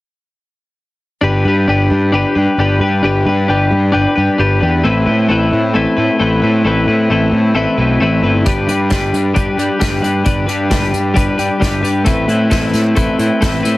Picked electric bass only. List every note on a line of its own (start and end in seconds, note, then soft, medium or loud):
1.22 1.43 G1 medium
1.45 1.66 G2 medium
1.68 1.89 G1 medium
1.91 2.11 G2 medium
2.13 2.24 G1 medium
2.36 2.46 G2 medium
2.58 2.79 G1 medium
2.79 3.01 G2 medium
3.02 3.24 G1 medium
3.26 3.47 G2 medium
3.49 3.70 G1 medium
3.71 3.92 G2 medium
3.95 4.05 G1 medium
4.17 4.28 G2 medium
4.39 4.60 G1 medium
4.62 4.82 E2 medium
4.84 5.05 A1 medium
5.07 5.27 A2 medium
5.29 5.50 A1 medium
5.53 5.73 A2 medium
5.75 5.85 A1 medium
5.97 6.08 A2 medium
6.20 6.41 A1 medium
6.43 6.63 A2 medium
6.64 6.85 A1 medium
6.87 7.08 A2 medium
7.10 7.30 A1 medium
7.32 7.53 A2 medium
7.55 7.65 A1 medium
7.78 7.98 B1 medium
8.00 8.21 A1 medium
8.22 8.43 G1 medium
8.46 8.66 G1 medium
8.68 8.88 G2 medium
8.91 9.11 G1 medium
9.13 9.33 G2 medium
9.36 9.46 G1 medium
9.57 9.68 G2 medium
9.81 10.01 G1 medium
10.01 10.22 G2 medium
10.26 10.46 G1 medium
10.46 10.67 G2 medium
10.71 10.91 G1 medium
10.93 11.14 G2 medium
11.16 11.26 G1 medium
11.39 11.49 G2 medium
11.62 11.82 G1 medium
11.82 12.03 G2 medium
12.06 12.26 A1 medium
12.28 12.48 A2 medium
12.52 12.72 A1 medium
12.74 12.94 A2 medium
12.97 13.07 A1 medium
13.19 13.29 A2 medium
13.42 13.62 A1 medium
13.64 13.78 A2 medium